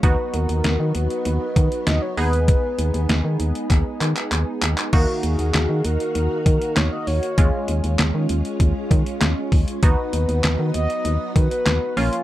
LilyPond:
<<
  \new Staff \with { instrumentName = "Soft synth lead" } { \time 4/4 \key ces \lydian \tempo 4 = 98 b'8 bes'4 b'4. dis''16 des''16 ces''8~ | ces''4 r2. | bes'8 aes'4 bes'4. des''16 ees''16 des''8~ | des''4 r2. |
b'4. dis''4 b'16 b'8. des''8 | }
  \new Staff \with { instrumentName = "Analog polysynth" } { \time 4/4 \key ces \lydian <b dis' fis'>2.~ <b dis' fis'>8 <ces' ees' aes'>8~ | <ces' ees' aes'>1 | <bes ees' ges'>1 | <aes des' f'>1 |
<b dis' fis'>2.~ <b dis' fis'>8 <bes des' f'>8 | }
  \new Staff \with { instrumentName = "String machine" } { \time 4/4 \key ces \lydian << { <b dis'>1~ | <b dis'>1 | <ees ges' bes'>1 | <des' f'>1 |
<b dis'>2.~ <b dis'>8 <bes des'>8 | } \\ { fis2.~ fis8 aes8~ | aes1 | f''1 | aes1 |
fis2.~ fis8 f8 | } >> }
  \new Staff \with { instrumentName = "FM bass" } { \clef bass \time 4/4 \key ces \lydian dis,16 r16 dis,16 dis,16 dis,16 dis16 dis,16 r16 dis,16 r16 dis16 r16 dis,16 r16 ees,8~ | ees,16 r16 ees,16 ees,16 ees,16 ees16 ees,16 r16 ees,16 r16 ees16 r16 ees,16 r16 ees,16 r16 | ees,16 r16 ees,16 ees,16 ees,16 ees16 ees,16 r16 ees,16 r16 ees16 r16 ees,16 r16 ees,16 r16 | ees,16 r16 ees,16 ees,16 ees,16 ees16 ees,16 r16 ees,16 r16 ees16 r16 ees,16 r16 ees,16 r16 |
dis,16 r16 dis,16 dis,16 dis,16 dis16 dis,16 r16 dis,16 r16 dis16 r16 dis,16 r16 bes,,16 r16 | }
  \new DrumStaff \with { instrumentName = "Drums" } \drummode { \time 4/4 <hh bd>8 hh16 hh16 <hh sn>8 hh16 hh16 hh8 <hh bd>16 hh16 <hh sn>8 hho16 hh16 | <hh bd>8 hh16 hh16 <hh sn>8 hh16 hh16 <hc hh bd>8 <hc hh>16 <hc hh>16 <hc hh>8 <hc hh>16 <hc hh>16 | <cymc bd>8 hh16 hh16 <hc hh sn>8 hh16 hh16 hh8 <hh bd>16 hh16 <hc hh sn>8 hho16 hh16 | <hh bd>8 hh16 hh16 <hc hh sn>8 hh16 hh16 <hh bd>8 <hh bd>16 hh16 <hc hh sn>8 <hho bd>16 hh16 |
<hh bd>8 hh16 hh16 <hc hh sn>8 hh16 hh16 hh8 <hh bd>16 hh16 <hc hh sn>8 hho16 hh16 | }
>>